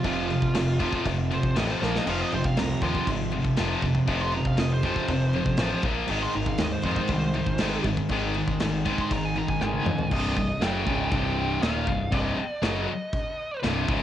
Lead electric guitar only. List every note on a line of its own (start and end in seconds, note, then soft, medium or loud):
0.07 1.04 F4 loud
1.34 1.57 C5 loud
1.58 1.71 D#5 loud
1.71 1.84 C5 loud
1.84 1.95 A#4 medium
1.98 2.10 D#5 loud
2.10 2.21 F5 loud
2.22 2.33 D#5 loud
2.34 2.45 C5 loud
2.45 2.57 F5 loud
2.59 2.82 A#5 loud
2.83 3.07 C6 loud
4.22 4.34 C6 loud
4.34 4.46 A#5 loud
4.47 4.59 F5 loud
4.59 4.71 D#5 loud
4.73 4.84 C5 loud
4.85 5.82 C5 loud
6.23 6.36 C6 loud
6.36 6.47 A#5 loud
6.48 6.60 F5 loud
6.61 6.72 D#5 loud
6.72 6.84 C5 medium
6.86 7.83 C5 loud
9.01 9.13 C6 medium
9.13 9.25 A#5 loud
9.25 9.38 G#5 loud
9.38 9.49 A#5 loud
9.50 9.61 G#5 loud
9.62 10.10 G#5 loud
10.13 10.63 D#5 medium
10.63 11.09 G5 loud
11.12 11.63 G5 loud
11.63 12.14 F5 loud
12.12 12.50 D#5 loud
12.50 12.63 D5 loud
12.64 13.60 D#5 medium